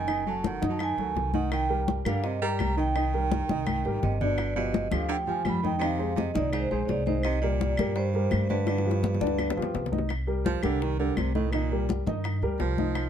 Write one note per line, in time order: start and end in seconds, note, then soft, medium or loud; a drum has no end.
0.00 0.56 F#1 medium
0.00 0.24 D#3 medium
0.00 0.28 G#5 medium
0.07 0.22 D#3 medium
0.07 0.23 D#4 medium
0.07 0.23 D#5 medium
0.07 high bongo medium
0.07 high conga soft
0.07 claves medium
0.26 0.56 F#3 medium
0.26 0.43 F#3 medium
0.26 0.56 F#4 medium
0.26 0.56 A4 medium
0.26 0.44 A5 medium
0.26 high conga soft
0.44 0.67 D#3 medium
0.44 0.68 F#5 medium
0.44 high bongo medium
0.44 high conga medium
0.62 0.95 F#2 medium
0.62 0.91 D#3 medium
0.62 0.91 D#4 medium
0.62 0.92 D#5 medium
0.62 high bongo soft
0.62 high conga medium
0.69 0.80 F#3 medium
0.69 0.81 A5 medium
0.79 1.30 D#3 medium
0.79 1.32 G#5 medium
0.79 high bongo medium
0.79 high conga soft
0.79 claves medium
0.97 1.14 D2 medium
0.97 1.28 F#3 medium
0.97 1.28 F#4 medium
0.97 1.28 A4 medium
0.97 high bongo soft
0.97 high conga soft
1.15 1.99 C2 medium
1.15 high bongo soft
1.15 low bongo medium
1.15 high conga soft
1.33 1.50 D#3 medium
1.33 1.64 D#3 medium
1.33 1.64 D#4 medium
1.33 1.63 D#5 medium
1.33 1.51 F#5 medium
1.33 high bongo soft
1.33 high conga medium
1.52 1.85 D#3 medium
1.52 1.86 G5 loud
1.52 high bongo medium
1.52 high conga soft
1.52 claves medium
1.69 1.99 G3 medium
1.69 1.99 G4 medium
1.69 1.99 A#4 medium
1.69 high conga soft
1.88 high bongo medium
1.88 high conga medium
2.05 2.55 G2 medium
2.05 2.22 D3 medium
2.05 2.34 G3 medium
2.05 2.35 G4 medium
2.05 2.35 A#4 medium
2.05 2.23 F5 medium
2.05 high bongo soft
2.05 high conga medium
2.05 claves medium
2.24 2.41 C3 medium
2.24 2.40 D#5 medium
2.24 high bongo medium
2.24 high conga soft
2.42 2.75 G3 medium
2.42 2.71 G3 medium
2.42 2.71 G4 medium
2.42 2.71 A#4 medium
2.42 2.79 A#5 medium
2.42 high bongo soft
2.42 high conga soft
2.59 3.43 C2 medium
2.59 high bongo soft
2.59 low bongo medium
2.59 high conga medium
2.59 claves medium
2.77 2.92 D#3 medium
2.77 3.99 D#3 medium
2.77 2.92 D#4 medium
2.77 2.92 D#5 medium
2.77 4.07 G5 medium
2.77 high bongo soft
2.96 3.10 D#3 medium
2.96 3.10 D#4 medium
2.96 3.10 D#5 medium
2.96 high bongo medium
2.96 high conga soft
2.96 claves medium
3.13 3.43 G3 medium
3.13 3.43 G4 medium
3.13 3.43 A#4 medium
3.13 high conga soft
3.32 high bongo medium
3.32 high conga loud
3.49 3.82 C2 medium
3.49 3.79 D#3 medium
3.49 3.79 D#4 medium
3.49 3.79 D#5 medium
3.49 high bongo soft
3.49 high conga medium
3.67 high bongo medium
3.67 high conga medium
3.67 claves medium
3.85 4.02 G#1 medium
3.85 4.14 G3 medium
3.85 4.15 G4 medium
3.85 4.15 A#4 medium
3.85 high bongo soft
4.03 4.87 G1 medium
4.03 4.19 C3 medium
4.03 4.20 D#5 medium
4.03 high bongo soft
4.03 low bongo medium
4.03 low conga medium
4.20 4.54 B2 medium
4.20 4.50 D3 medium
4.20 4.50 D4 medium
4.20 4.50 D5 medium
4.20 4.58 D5 medium
4.20 high bongo soft
4.20 low conga medium
4.38 high bongo medium
4.38 high conga soft
4.38 claves medium
4.55 4.89 B2 medium
4.55 4.85 F3 medium
4.55 4.85 F4 medium
4.55 4.86 G4 medium
4.55 4.90 D#5 medium
4.55 high conga soft
4.74 high bongo medium
4.74 high conga loud
4.90 5.42 D2 medium
4.90 5.08 D3 medium
4.90 5.21 F3 medium
4.90 5.21 F4 medium
4.90 5.22 G4 medium
4.90 5.09 F5 medium
4.90 high bongo soft
4.90 high conga medium
4.90 claves medium
5.08 5.17 D3 medium
5.08 5.19 G5 medium
5.08 high bongo medium
5.08 high conga soft
5.27 5.44 F3 medium
5.27 5.57 F3 medium
5.27 5.57 F4 medium
5.27 5.57 G4 medium
5.27 5.47 G#5 medium
5.27 high bongo soft
5.27 high conga soft
5.45 6.29 F2 medium
5.45 5.62 G3 medium
5.45 high bongo soft
5.45 low bongo medium
5.45 high conga medium
5.45 claves medium
5.49 5.66 B5 medium
5.62 5.78 D#3 medium
5.62 5.79 D#4 medium
5.62 5.79 D#5 medium
5.62 5.81 G5 medium
5.62 high bongo soft
5.62 high conga medium
5.79 6.13 C3 medium
5.79 5.96 D#3 medium
5.79 5.97 D#4 medium
5.79 5.97 D#5 medium
5.79 high bongo medium
5.79 high conga soft
5.79 claves medium
5.83 6.16 F5 medium
5.99 6.28 G#3 medium
5.99 6.29 G#4 medium
5.99 6.29 C5 medium
5.99 high conga soft
6.15 6.33 C3 medium
6.15 6.35 D#5 medium
6.15 high bongo soft
6.15 high conga medium
6.33 6.68 C2 medium
6.33 6.51 A#2 medium
6.33 6.64 D#3 medium
6.33 6.65 D#4 medium
6.33 6.54 D5 medium
6.33 6.65 D#5 medium
6.33 high bongo soft
6.33 high conga medium
6.52 6.69 G#2 medium
6.52 6.70 C5 medium
6.52 high bongo medium
6.52 high conga soft
6.52 claves medium
6.71 6.88 A#1 medium
6.71 6.83 G#2 medium
6.71 7.00 G#3 medium
6.71 7.01 G#4 medium
6.71 6.84 C5 medium
6.71 7.01 C5 medium
6.71 high bongo soft
6.71 high conga soft
6.85 6.88 G#2 medium
6.85 6.89 C#5 medium
6.85 7.07 D5 medium
6.89 7.73 C2 medium
6.89 7.05 G#2 medium
6.89 high bongo soft
6.89 low bongo medium
6.89 high conga soft
7.06 7.23 G#2 medium
7.06 7.36 D#3 medium
7.06 7.36 D#4 medium
7.06 7.25 C5 medium
7.06 7.37 D#5 medium
7.06 high bongo soft
7.06 high conga medium
7.23 7.41 C3 medium
7.23 7.41 D#5 medium
7.23 high bongo medium
7.23 high conga soft
7.23 claves medium
7.41 7.92 A#2 medium
7.41 7.72 G3 medium
7.41 7.72 G4 medium
7.41 7.72 A#4 medium
7.41 7.98 D5 medium
7.41 high conga soft
7.61 high bongo soft
7.61 high conga medium
7.77 8.28 G2 medium
7.77 8.08 G3 medium
7.77 8.08 G4 medium
7.77 8.08 A#4 medium
7.77 high bongo soft
7.77 high conga medium
7.77 claves medium
7.95 8.46 G2 medium
7.95 8.52 C5 medium
7.95 high bongo medium
7.95 high conga soft
8.13 8.44 G3 medium
8.13 8.44 G4 medium
8.13 8.44 A#4 medium
8.13 high bongo soft
8.13 high conga soft
8.31 9.16 G2 medium
8.31 high bongo soft
8.31 low bongo medium
8.31 high conga medium
8.31 claves medium
8.49 9.89 G2 medium
8.49 8.64 D3 medium
8.49 8.65 D4 medium
8.49 9.89 B4 medium
8.49 8.65 D5 medium
8.49 high bongo soft
8.49 high conga medium
8.67 8.82 D3 medium
8.67 8.82 D4 medium
8.67 8.83 D5 medium
8.67 high bongo medium
8.67 high conga soft
8.67 claves medium
8.78 high bongo medium
8.85 9.15 F3 medium
8.85 9.15 F4 medium
8.85 9.15 G4 medium
8.85 high conga soft
8.91 high bongo medium
9.03 low bongo medium
9.03 high conga medium
9.14 low bongo medium
9.20 9.55 D2 medium
9.20 9.50 D3 medium
9.20 9.50 D4 medium
9.20 9.50 D5 medium
9.20 high conga medium
9.27 high bongo medium
9.38 low bongo medium
9.38 high conga soft
9.38 claves medium
9.50 low bongo medium
9.57 9.74 D2 medium
9.57 9.86 F3 medium
9.57 9.86 F4 medium
9.57 9.87 G4 medium
9.57 high conga soft
9.62 low bongo medium
9.74 10.58 C2 medium
9.74 low bongo loud
9.74 high conga soft
9.86 low bongo medium
9.92 10.07 D#3 medium
9.92 10.07 D#4 medium
9.92 10.07 D#5 medium
9.92 high conga medium
9.98 low bongo medium
10.09 high bongo medium
10.09 high conga soft
10.09 claves medium
10.27 10.57 G3 medium
10.27 10.57 G4 medium
10.27 10.57 A#4 medium
10.27 high conga soft
10.45 10.62 F3 medium
10.45 high bongo medium
10.45 high conga medium
10.63 11.13 C2 medium
10.63 10.84 D3 medium
10.63 10.92 G3 medium
10.63 10.93 G4 medium
10.63 10.93 A#4 medium
10.63 high bongo soft
10.63 high conga medium
10.63 claves medium
10.82 10.99 D#3 medium
10.82 high bongo medium
10.82 high conga soft
10.99 11.19 D3 medium
10.99 11.29 G3 medium
10.99 11.29 G4 medium
10.99 11.29 A#4 medium
10.99 high bongo soft
10.99 high conga soft
11.17 12.00 C2 medium
11.17 11.34 C3 medium
11.17 high bongo soft
11.17 low bongo medium
11.17 high conga medium
11.17 claves medium
11.35 11.53 A2 medium
11.35 11.50 D#3 medium
11.35 11.50 D#4 medium
11.35 11.50 D#5 medium
11.35 high bongo soft
11.35 high conga medium
11.52 11.88 A#2 medium
11.52 11.68 D#3 medium
11.52 11.68 D#4 medium
11.52 11.69 D#5 medium
11.52 high bongo medium
11.52 high conga soft
11.52 claves medium
11.72 12.01 G3 medium
11.72 12.01 G4 medium
11.72 12.01 A#4 medium
11.72 high conga soft
11.89 high bongo medium
11.89 high conga medium
12.06 12.40 G2 medium
12.06 12.36 D#3 medium
12.06 12.36 D#4 medium
12.06 12.37 D#5 medium
12.06 high bongo soft
12.06 high conga medium
12.24 high bongo medium
12.24 high conga soft
12.24 claves medium
12.42 12.59 D2 medium
12.42 12.72 G3 medium
12.42 12.72 G4 medium
12.42 12.72 A#4 medium
12.42 high bongo soft
12.42 high conga soft
12.59 13.10 C2 medium
12.59 13.10 F3 medium
12.59 high bongo soft
12.59 low bongo medium
12.59 high conga soft
12.78 13.07 D#3 medium
12.78 13.08 D#4 medium
12.78 13.08 D#5 medium
12.78 high bongo soft
12.78 high conga medium
12.95 high bongo medium
12.95 high conga soft
12.95 claves medium